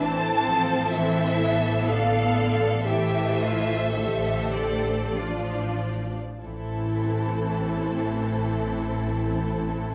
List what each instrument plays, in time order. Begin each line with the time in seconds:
0.03 double bass section A1, viola section E3 C4, cello section C4, violin section A4 C5 A5
0.50 viola section F3
0.96 viola section E3 C4, cello section E4, violin section C5 E5
1.42 viola section B3
1.90 viola section D3, cello section A4, violin section D5 F5
2.37 viola section D3
2.87 viola section E3 A3, cello section G4, violin section A4 C5 E5
3.40 cello section F4
3.95 viola section D3 A3, violin section G4, cello section A4
4.54 violin section D5
5.15 viola section F3 D4, violin section F4 D5, cello section F4
6.43 double bass section A1, cello section A2, viola section E3 C4, violin section E4 A4